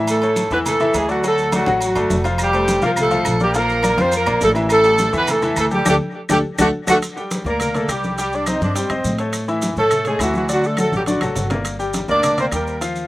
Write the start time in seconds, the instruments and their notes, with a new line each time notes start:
Already playing: upright bass A2, grand piano E3 E4 E5
0.07 horn section A3 A4, high conga, low agogo, maracas
0.22 grand piano A3 A4 C#5, high conga, low agogo, maracas
0.36 high conga, low agogo, maracas
0.51 upright bass E2, grand piano E3 E4 E5, horn section B3 B4, high conga, maracas
0.66 horn section A3 A4, high conga, low conga, low agogo, maracas
0.80 grand piano E3 E4 E5, high conga, low conga, maracas
0.94 upright bass D2, horn section G#3 G#4, high conga, low timbale, low agogo, maracas
1.08 horn section F#3 F#4, grand piano A3 A4 D5, maracas
1.23 grand piano F#3 F#4 F#5, horn section A3 A4, high conga, low agogo, maracas
1.38 high conga, maracas
1.52 horn section F#3 F#4, grand piano A3 A4 D5, high conga, low agogo, maracas
1.66 upright bass A1, grand piano F#3 F#4 F#5, high conga, low agogo, maracas
1.80 horn section F#3 F#4, high conga, low agogo, maracas
1.95 upright bass G1, grand piano A3 A4 D5, high conga, low agogo, maracas
2.10 upright bass F1, high conga, low timbale, maracas
2.24 grand piano F3 F4 F5, high conga, low agogo, maracas
2.38 horn section G3, high conga, low agogo, claves, maracas
2.43 horn section G4
2.53 grand piano A3 A4 C5, high conga, low agogo, maracas
2.68 high conga, low agogo, maracas
2.82 upright bass C2, grand piano F3 F4 F5, horn section A#3 A#4, high conga, maracas
2.96 horn section A3, high conga, low conga, low agogo, claves, maracas
3.01 horn section A4
3.11 grand piano F3 F4 F5, high conga, low conga, maracas
3.25 upright bass A#1, high conga, low agogo, claves, maracas
3.40 horn section G3 G4, grand piano A#3 A#4 D5, high conga, maracas
3.54 grand piano F3 F4 F5, horn section A#3 A#4, high conga, low agogo, maracas
3.69 high conga, maracas
3.83 grand piano A#3 A#4 D5, high conga, low agogo, claves, maracas
3.97 upright bass F2, grand piano F3 F4 F5, horn section C4, high conga, low agogo, maracas
4.02 horn section C5
4.12 horn section A#3 A#4, high conga, low agogo, maracas
4.26 upright bass A#1, grand piano A#3 A#4 D5, high conga, low agogo, claves, maracas
4.41 upright bass A1, horn section A3 A4, high conga, low timbale, maracas
4.55 grand piano E3 E4 E5, high conga, low agogo, maracas
4.69 horn section A3 A4, high conga, low agogo, claves, maracas
4.84 grand piano G3 G4 A4, high conga, low agogo, maracas
4.98 high conga, low agogo, maracas
5.13 upright bass E2, grand piano E3 E4 E5, horn section B3, high conga, maracas
5.17 horn section B4
5.27 horn section A3 A4, high conga, low conga, low agogo, claves, maracas
5.42 grand piano E3 E4 E5, high conga, low conga, maracas
5.56 upright bass D2, horn section A3 A4, high conga, low agogo, claves, maracas
5.71 grand piano G3 G4 A4, horn section G3 G4, high conga, maracas
5.85 upright bass D2, horn section A3 D4 G4, grand piano D4 G4 A4, high conga, high timbale, claves, maracas
6.29 upright bass D2, horn section A3 D4 G4, grand piano D4 G4 A4, high conga, high timbale, claves, maracas
6.58 upright bass D2, horn section A3 D4 F#4, grand piano D4 F#4 A4, high conga, high timbale, claves, maracas
6.87 upright bass D2, horn section A3 D4 F#4, grand piano D4 F#4 A4, high conga, high timbale, claves, maracas
7.02 high conga, high timbale, claves, maracas
7.17 grand piano G3 G4 G5, high conga, maracas
7.31 high conga, high timbale, maracas
7.44 upright bass D2, grand piano A#3 A#4 D5, horn section A#3, high conga, maracas
7.49 horn section A#4
7.60 horn section A#3 A#4, high conga, low conga, high timbale, claves, maracas
7.74 horn section A3 A4, grand piano A#3 A#4 D5, high conga, low conga, high timbale, maracas
7.88 upright bass C2, grand piano G3 G4 G5, horn section G3 G4, high conga, high timbale, claves, maracas
8.04 high conga, maracas
8.18 grand piano G3 G4 G5, horn section G3 G4, high conga, high timbale, maracas
8.33 horn section D4 D5, high conga, maracas
8.46 grand piano C4 C5 D#5, horn section D#4 D#5, high conga, high timbale, claves, maracas
8.61 upright bass G2, horn section D4 D5, high conga, maracas
8.75 grand piano G3 G4 G5, horn section C4 C5, high conga, high timbale, maracas
8.89 upright bass G2, grand piano C4 C5 D#5, high conga, high timbale, claves, maracas
9.04 upright bass A2, high conga, maracas
9.18 grand piano A3 A4 C#5, high conga, high timbale, maracas
9.33 high conga, high timbale, claves, maracas
9.48 grand piano E3 E4 E5, high conga, maracas
9.62 high conga, high timbale, maracas
9.76 upright bass A2, grand piano A3 A4 C#5, horn section A3 A4, high conga, maracas
9.91 high conga, low conga, high timbale, claves, maracas
10.05 horn section G#3 G#4, grand piano A3 A4 C#5, high conga, low conga, high timbale, maracas
10.19 upright bass D2, grand piano E3 E4 E5, horn section F#3 F#4, high conga, high timbale, claves, maracas
10.34 horn section F#3 F#4, high conga, maracas
10.48 grand piano D3 D4 D5, horn section F#3 F#4, high conga, high timbale, maracas
10.63 horn section A3 A4, high conga, maracas
10.77 grand piano F#3 F#4 A4, horn section A3, high conga, high timbale, claves, maracas
10.81 horn section A4
10.92 upright bass A1, high conga, maracas
10.97 horn section G3 G4
11.06 grand piano D3 D4 D5, horn section F#3 F#4, high conga, high timbale, maracas
11.21 upright bass A1, grand piano F#3 F#4 A4, low conga, high timbale, claves, maracas
11.35 upright bass G1, low conga, low timbale, maracas
11.50 grand piano A#3 A#4 D5, low conga, high timbale, maracas
11.65 high conga, high timbale, claves, maracas
11.79 grand piano G3 G4 G5, high conga, maracas
11.94 high conga, high timbale, maracas
12.08 upright bass D2, grand piano A#3 A#4 D5, horn section D4 D5, high conga, maracas
12.23 high conga, low conga, high timbale, claves, maracas
12.37 grand piano A#3 A#4 D5, horn section C4 C5, high conga, low conga, high timbale, maracas
12.52 upright bass D#2, grand piano G3 G4 G5, horn section A#3 A#4, high conga, high timbale, claves, maracas
12.67 maracas
12.81 grand piano F3 F4 F5, high conga, high timbale, maracas
12.96 high conga, maracas